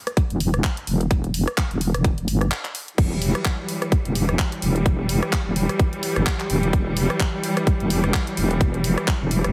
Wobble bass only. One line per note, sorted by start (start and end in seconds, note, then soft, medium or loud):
0.30 0.62 E1 medium
0.87 1.09 E1 medium
1.11 1.45 E1 medium
1.71 1.92 E1 loud
1.94 2.26 E1 loud
2.28 2.51 G1 medium
2.98 3.33 E1 medium
4.05 4.37 E1 medium
4.62 4.84 E1 loud
4.86 5.20 E1 loud
5.46 5.67 E1 medium
6.16 6.25 G1 medium
6.50 6.72 E1 loud
6.73 7.08 E1 medium
7.80 8.12 E1 medium
8.37 8.59 E1 medium
8.61 8.95 E1 medium
9.21 9.42 E1 loud
9.44 9.52 E1 loud